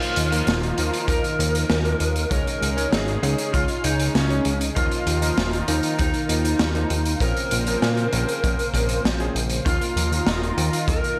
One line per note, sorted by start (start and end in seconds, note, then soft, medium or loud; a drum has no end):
0.00 2.29 D#3 medium
0.00 0.28 F3 medium
0.00 0.28 A#3 medium
0.00 0.28 D#4 medium
0.00 7.17 D#4 medium
0.00 1.08 F4 loud
0.00 2.29 F4 medium
0.00 0.28 A#4 medium
0.00 2.28 A#4 medium
0.00 closed hi-hat soft
0.16 0.42 D#2 medium
0.16 closed hi-hat loud
0.32 0.74 F3 medium
0.32 0.74 A#3 medium
0.32 0.74 D#4 medium
0.32 0.74 A#4 loud
0.32 closed hi-hat medium
0.47 0.72 D#1 loud
0.47 snare loud
0.47 closed hi-hat medium
0.63 closed hi-hat soft
0.78 0.91 D#2 medium
0.78 1.05 F3 medium
0.78 1.05 A#3 medium
0.78 1.05 D#4 medium
0.78 1.05 A#4 medium
0.78 closed hi-hat loud
0.93 closed hi-hat medium
1.08 1.21 D#2 medium
1.08 1.23 F3 medium
1.08 1.23 A#3 medium
1.08 1.23 D#4 medium
1.08 2.30 A#4 loud
1.08 1.23 A#4 medium
1.08 kick loud
1.08 closed hi-hat medium
1.24 closed hi-hat soft
1.39 1.64 D#2 medium
1.39 1.81 F3 medium
1.39 1.81 A#3 medium
1.39 1.81 D#4 medium
1.39 1.81 A#4 medium
1.39 closed hi-hat loud
1.55 closed hi-hat medium
1.70 1.95 D#2 medium
1.70 snare loud
1.70 closed hi-hat medium
1.85 2.08 F3 medium
1.85 2.08 A#3 medium
1.85 2.08 D#4 medium
1.85 2.08 A#4 loud
1.85 closed hi-hat soft
2.00 2.26 D#2 medium
2.00 closed hi-hat medium
2.16 closed hi-hat medium
2.31 2.44 C#2 medium
2.31 4.74 C#3 medium
2.31 2.73 G#3 medium
2.31 4.74 C#4 medium
2.31 2.73 C#4 medium
2.31 2.73 D#4 medium
2.31 4.74 G#4 medium
2.31 2.94 A#4 loud
2.31 2.73 C#5 medium
2.31 kick loud
2.31 closed hi-hat medium
2.47 closed hi-hat soft
2.61 2.87 C#2 medium
2.61 closed hi-hat medium
2.77 3.19 G#3 medium
2.77 3.19 C#4 medium
2.77 3.19 D#4 medium
2.77 3.19 C#5 loud
2.77 closed hi-hat medium
2.92 3.17 G#1 loud
2.92 3.22 G#4 loud
2.92 snare loud
2.92 closed hi-hat medium
3.08 closed hi-hat soft
3.23 3.35 C#2 medium
3.23 3.50 G#3 medium
3.23 3.50 C#4 medium
3.23 3.50 D#4 medium
3.23 3.52 G#4 loud
3.23 3.50 C#5 loud
3.23 closed hi-hat loud
3.38 closed hi-hat medium
3.53 3.66 C#2 medium
3.53 3.68 G#3 medium
3.53 3.68 C#4 medium
3.53 3.68 D#4 medium
3.53 3.85 F4 medium
3.53 3.68 C#5 medium
3.53 kick loud
3.53 closed hi-hat medium
3.68 closed hi-hat soft
3.84 4.09 C#2 medium
3.84 4.26 G#3 medium
3.84 4.26 C#4 medium
3.84 4.26 D#4 medium
3.84 4.15 D#4 loud
3.84 4.26 C#5 medium
3.84 closed hi-hat loud
3.99 closed hi-hat medium
4.15 4.40 C#2 medium
4.15 4.58 C#4 medium
4.15 snare loud
4.15 closed hi-hat medium
4.30 4.53 G#3 medium
4.30 4.53 C#4 medium
4.30 4.53 D#4 medium
4.30 4.53 C#5 loud
4.30 closed hi-hat soft
4.45 4.71 C#2 medium
4.45 closed hi-hat medium
4.61 closed hi-hat medium
4.76 4.89 D#2 medium
4.76 7.18 D#3 medium
4.76 5.18 F3 medium
4.76 5.18 A#3 medium
4.76 5.18 D#4 medium
4.76 7.18 F4 medium
4.76 5.71 F4 medium
4.76 5.18 A#4 medium
4.76 7.18 A#4 medium
4.76 kick loud
4.76 closed hi-hat medium
4.91 closed hi-hat soft
5.07 5.32 D#2 medium
5.07 closed hi-hat medium
5.22 5.64 F3 loud
5.22 5.64 A#3 medium
5.22 5.64 D#4 medium
5.22 5.64 A#4 loud
5.22 closed hi-hat medium
5.37 5.62 D#1 loud
5.37 snare loud
5.37 closed hi-hat medium
5.53 closed hi-hat soft
5.68 5.80 D#2 medium
5.68 5.95 F3 medium
5.68 5.95 A#3 medium
5.68 5.95 D#4 medium
5.68 5.98 D#4 medium
5.68 5.95 A#4 loud
5.68 closed hi-hat loud
5.83 closed hi-hat medium
5.98 6.12 D#2 medium
5.98 6.13 F3 medium
5.98 6.13 A#3 medium
5.98 6.13 D#4 medium
5.98 7.17 D#4 medium
5.98 6.13 A#4 medium
5.98 kick loud
5.98 closed hi-hat medium
6.14 closed hi-hat soft
6.29 6.54 D#2 medium
6.29 6.71 F3 medium
6.29 6.71 A#3 medium
6.29 6.71 D#4 medium
6.29 6.71 A#4 medium
6.29 closed hi-hat loud
6.45 closed hi-hat medium
6.59 6.85 D#2 medium
6.59 snare loud
6.59 closed hi-hat medium
6.75 6.98 F3 medium
6.75 6.98 A#3 medium
6.75 6.98 D#4 medium
6.75 6.98 A#4 medium
6.75 closed hi-hat soft
6.90 7.15 D#2 medium
6.90 closed hi-hat medium
7.05 closed hi-hat medium
7.20 7.33 A#1 loud
7.20 9.63 C#3 medium
7.20 7.63 F3 medium
7.20 9.64 A#3 medium
7.20 7.63 C4 medium
7.20 7.63 C#4 medium
7.20 7.63 A#4 medium
7.20 9.01 A#4 medium
7.20 9.63 C5 medium
7.20 kick loud
7.20 closed hi-hat medium
7.36 closed hi-hat soft
7.51 7.77 A#1 medium
7.51 closed hi-hat loud
7.67 8.09 F3 medium
7.67 8.09 C4 medium
7.67 8.09 C#4 medium
7.67 8.09 A#4 loud
7.67 closed hi-hat medium
7.82 8.07 A#2 loud
7.82 snare loud
7.82 closed hi-hat medium
7.97 closed hi-hat soft
8.13 8.25 A#1 medium
8.13 8.40 F3 medium
8.13 8.40 C4 medium
8.13 8.40 C#4 medium
8.13 8.40 A#4 loud
8.13 closed hi-hat loud
8.29 closed hi-hat medium
8.44 8.56 A#1 medium
8.44 8.58 F3 medium
8.44 8.58 C4 medium
8.44 8.58 C#4 medium
8.44 8.58 A#4 medium
8.44 kick loud
8.44 closed hi-hat medium
8.59 closed hi-hat soft
8.74 8.99 A#1 medium
8.74 9.16 F3 medium
8.74 9.16 C4 medium
8.74 9.16 C#4 medium
8.74 9.16 A#4 medium
8.74 kick medium
8.74 closed hi-hat medium
8.89 closed hi-hat medium
9.05 9.30 A#1 medium
9.05 snare loud
9.05 closed hi-hat medium
9.20 9.34 F3 medium
9.20 9.34 C4 medium
9.20 9.34 C#4 medium
9.20 9.34 G#4 loud
9.20 closed hi-hat soft
9.35 9.60 A#1 medium
9.35 closed hi-hat loud
9.49 closed hi-hat medium
9.66 9.78 D#2 medium
9.66 11.19 D#3 medium
9.66 9.78 D#4 medium
9.66 11.19 D#4 medium
9.66 10.92 F4 loud
9.66 11.19 F4 medium
9.66 11.19 A#4 medium
9.66 kick loud
9.66 closed hi-hat medium
9.81 9.94 A#3 medium
9.81 closed hi-hat soft
9.96 10.21 D#2 medium
9.96 10.09 F3 medium
9.96 closed hi-hat medium
10.12 10.26 D#3 medium
10.12 closed hi-hat medium
10.27 10.52 D#1 loud
10.27 10.42 D#4 medium
10.27 snare loud
10.27 closed hi-hat medium
10.42 10.55 A#3 medium
10.42 closed hi-hat soft
10.57 10.70 D#2 loud
10.57 10.65 F3 loud
10.57 closed hi-hat loud
10.73 10.85 D#3 medium
10.73 closed hi-hat medium
10.88 11.01 D#2 medium
10.88 11.01 D#4 medium
10.88 11.19 A#4 loud
10.88 kick loud
10.88 closed hi-hat medium
11.04 11.16 A#3 medium
11.04 closed hi-hat soft